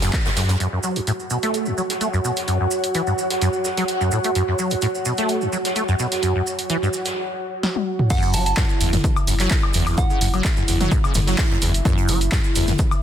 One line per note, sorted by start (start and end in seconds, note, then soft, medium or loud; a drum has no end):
0.00 0.11 F#2 loud
0.00 0.59 F#4 medium
0.00 snare loud
0.00 closed hi-hat medium
0.00 maracas soft
0.00 shaker medium
0.13 kick loud
0.13 snare loud
0.13 clap loud
0.13 closed hi-hat medium
0.13 maracas soft
0.13 shaker medium
0.25 0.29 F#2 medium
0.25 snare loud
0.25 shaker medium
0.25 maracas soft
0.37 0.44 F#2 medium
0.37 0.57 F#2 loud
0.37 snare loud
0.37 open hi-hat loud
0.37 shaker medium
0.37 maracas medium
0.49 0.55 F#2 medium
0.49 snare loud
0.49 closed hi-hat medium
0.49 maracas soft
0.49 shaker medium
0.60 0.67 F#2 loud
0.60 8.11 F#4 medium
0.60 7.17 F#4 medium
0.60 closed hi-hat medium
0.60 maracas soft
0.73 0.79 F#2 medium
0.73 closed hi-hat soft
0.83 0.98 F#3 medium
0.83 maracas medium
0.83 shaker medium
0.94 1.00 E2 medium
0.94 7.16 F#5 medium
0.94 closed hi-hat medium
0.94 maracas soft
1.07 1.11 A2 loud
1.07 7.16 C#5 medium
1.07 closed hi-hat medium
1.07 shaker medium
1.07 maracas soft
1.20 maracas soft
1.30 1.37 B2 medium
1.30 maracas medium
1.30 shaker medium
1.43 1.68 A3 loud
1.43 snare soft
1.43 closed hi-hat medium
1.43 maracas soft
1.54 closed hi-hat medium
1.54 shaker medium
1.54 maracas medium
1.66 1.73 F#2 medium
1.66 maracas soft
1.77 1.82 F#3 medium
1.77 maracas medium
1.77 shaker medium
1.90 snare medium
1.90 closed hi-hat medium
1.90 maracas soft
2.01 2.08 A3 medium
2.01 closed hi-hat soft
2.01 maracas medium
2.01 shaker medium
2.13 2.19 F#2 loud
2.13 maracas soft
2.24 2.31 B2 medium
2.24 maracas medium
2.24 shaker medium
2.36 snare soft
2.36 closed hi-hat medium
2.36 maracas soft
2.48 2.58 F#2 medium
2.48 closed hi-hat medium
2.48 maracas medium
2.48 shaker medium
2.60 2.66 F#2 medium
2.71 maracas medium
2.71 shaker medium
2.84 closed hi-hat medium
2.84 maracas soft
2.94 3.02 E3 loud
2.94 closed hi-hat medium
2.94 maracas soft
2.94 shaker medium
3.07 3.13 G2 medium
3.07 maracas soft
3.17 shaker medium
3.17 maracas medium
3.30 snare soft
3.30 closed hi-hat medium
3.30 maracas soft
3.41 3.48 F#2 loud
3.41 closed hi-hat soft
3.41 shaker medium
3.41 maracas soft
3.53 maracas soft
3.65 snare soft
3.65 maracas medium
3.65 shaker medium
3.77 3.84 F#3 loud
3.77 snare soft
3.77 closed hi-hat medium
3.77 maracas soft
3.88 closed hi-hat soft
3.88 open hi-hat medium
3.88 maracas soft
4.00 4.10 F#2 medium
4.00 closed hi-hat soft
4.00 maracas soft
4.11 4.19 A2 medium
4.11 maracas loud
4.11 shaker medium
4.24 4.30 A3 medium
4.24 closed hi-hat medium
4.24 maracas soft
4.35 4.42 F#2 loud
4.35 closed hi-hat soft
4.35 maracas soft
4.35 shaker medium
4.48 4.54 F#2 medium
4.48 closed hi-hat soft
4.58 4.73 F#3 medium
4.58 shaker medium
4.58 maracas medium
4.70 4.75 E2 medium
4.70 closed hi-hat medium
4.70 maracas soft
4.82 4.86 A2 loud
4.82 closed hi-hat soft
4.82 maracas medium
4.95 maracas soft
5.05 5.13 B2 medium
5.05 maracas loud
5.05 shaker medium
5.17 5.43 A3 loud
5.17 snare soft
5.17 closed hi-hat medium
5.17 maracas soft
5.28 closed hi-hat soft
5.28 shaker medium
5.28 maracas medium
5.41 5.48 F#2 medium
5.41 maracas soft
5.52 5.57 F#3 medium
5.52 shaker medium
5.52 maracas medium
5.65 snare soft
5.65 closed hi-hat medium
5.65 maracas soft
5.76 5.83 A3 medium
5.76 closed hi-hat soft
5.76 maracas medium
5.76 shaker medium
5.88 5.94 F#2 loud
5.88 maracas soft
5.99 6.06 B2 medium
5.99 maracas medium
5.99 shaker medium
6.12 snare soft
6.12 closed hi-hat medium
6.12 maracas soft
6.23 6.33 F#2 medium
6.23 closed hi-hat soft
6.23 maracas medium
6.23 shaker medium
6.35 6.41 F#2 medium
6.46 shaker medium
6.46 maracas medium
6.59 closed hi-hat medium
6.59 maracas soft
6.69 6.77 E3 loud
6.69 closed hi-hat soft
6.69 maracas soft
6.69 shaker medium
6.82 6.88 G2 medium
6.82 maracas soft
6.93 maracas loud
6.93 shaker medium
7.05 snare soft
7.05 closed hi-hat medium
7.05 maracas soft
7.63 snare medium
7.76 high tom medium
7.99 mid tom medium
8.10 8.35 F#2 loud
8.10 13.03 E4 medium
8.10 8.32 F#5 medium
8.10 kick loud
8.10 closed hi-hat medium
8.10 crash loud
8.10 maracas soft
8.10 shaker loud
8.22 closed hi-hat soft
8.22 maracas soft
8.33 8.54 F#1 loud
8.33 8.44 F#3 loud
8.33 8.42 A5 medium
8.33 open hi-hat loud
8.33 maracas medium
8.33 shaker medium
8.46 8.53 A5 medium
8.46 closed hi-hat medium
8.46 maracas soft
8.57 8.64 G2 medium
8.57 kick loud
8.57 snare loud
8.57 clap loud
8.57 closed hi-hat medium
8.57 maracas medium
8.57 shaker medium
8.70 maracas soft
8.81 9.01 F#1 medium
8.81 8.91 E2 medium
8.81 open hi-hat loud
8.81 shaker medium
8.81 maracas medium
8.93 8.97 F#2 loud
8.93 snare soft
8.93 closed hi-hat medium
8.93 mid tom medium
8.93 maracas soft
9.04 kick loud
9.04 closed hi-hat medium
9.04 mid tom medium
9.04 maracas soft
9.04 shaker medium
9.16 high woodblock medium
9.16 maracas soft
9.27 9.47 F#1 loud
9.27 9.34 F#2 medium
9.27 open hi-hat loud
9.27 shaker medium
9.27 maracas loud
9.40 9.49 F#3 loud
9.40 snare medium
9.40 clap soft
9.40 closed hi-hat medium
9.40 maracas soft
9.50 kick loud
9.50 snare loud
9.50 clap loud
9.50 closed hi-hat medium
9.50 maracas medium
9.50 shaker medium
9.63 high woodblock medium
9.73 9.94 F#1 medium
9.73 9.99 E2 medium
9.73 open hi-hat loud
9.73 shaker medium
9.73 maracas medium
9.87 snare soft
9.87 closed hi-hat medium
9.87 high woodblock medium
9.87 maracas soft
9.98 10.05 F#2 medium
9.98 10.34 F#5 medium
9.98 kick loud
9.98 closed hi-hat medium
9.98 maracas medium
9.98 shaker medium
10.10 10.19 C#3 medium
10.10 maracas soft
10.21 10.41 F#1 loud
10.21 10.28 F#2 medium
10.21 open hi-hat loud
10.21 shaker medium
10.21 maracas loud
10.33 10.43 F#3 loud
10.33 closed hi-hat medium
10.33 high woodblock medium
10.33 maracas soft
10.44 kick loud
10.44 snare loud
10.44 clap loud
10.44 closed hi-hat medium
10.44 maracas medium
10.44 shaker medium
10.57 10.63 F#2 medium
10.57 maracas soft
10.68 10.88 F#1 medium
10.68 10.78 E2 medium
10.68 open hi-hat loud
10.68 maracas loud
10.68 shaker medium
10.80 10.93 F#3 loud
10.80 snare soft
10.80 closed hi-hat medium
10.80 mid tom medium
10.80 maracas soft
10.91 10.98 F#2 medium
10.91 kick loud
10.91 closed hi-hat medium
10.91 maracas medium
10.91 shaker medium
11.04 11.13 C#3 medium
11.04 high woodblock medium
11.04 maracas soft
11.14 11.35 F#1 loud
11.14 11.19 A2 loud
11.14 snare soft
11.14 open hi-hat loud
11.14 mid tom medium
11.14 maracas medium
11.14 shaker medium
11.27 11.36 F#3 loud
11.27 snare medium
11.27 closed hi-hat medium
11.27 maracas soft
11.38 kick loud
11.38 snare loud
11.38 clap loud
11.38 closed hi-hat medium
11.38 open hi-hat medium
11.38 maracas medium
11.51 11.57 F#2 medium
11.51 closed hi-hat soft
11.62 11.82 F#1 medium
11.62 11.72 E2 medium
11.62 open hi-hat loud
11.62 shaker medium
11.62 maracas medium
11.74 closed hi-hat medium
11.74 maracas soft
11.85 12.10 F#2 loud
11.85 kick loud
11.85 closed hi-hat medium
11.85 maracas medium
11.85 shaker medium
11.98 closed hi-hat soft
11.98 maracas soft
12.08 12.29 F#1 loud
12.08 12.19 F#3 loud
12.08 open hi-hat loud
12.08 shaker medium
12.08 maracas medium
12.21 closed hi-hat medium
12.21 maracas soft
12.32 12.39 G2 medium
12.32 kick loud
12.32 snare loud
12.32 clap loud
12.32 closed hi-hat medium
12.32 maracas medium
12.32 shaker medium
12.44 maracas soft
12.55 12.76 F#1 medium
12.55 12.66 E2 medium
12.55 open hi-hat loud
12.55 shaker medium
12.55 maracas loud
12.67 12.72 F#2 loud
12.67 snare soft
12.67 closed hi-hat medium
12.67 mid tom medium
12.67 maracas soft
12.79 kick loud
12.79 closed hi-hat medium
12.79 mid tom medium
12.79 shaker medium
12.79 maracas medium
12.91 high woodblock medium
12.91 maracas soft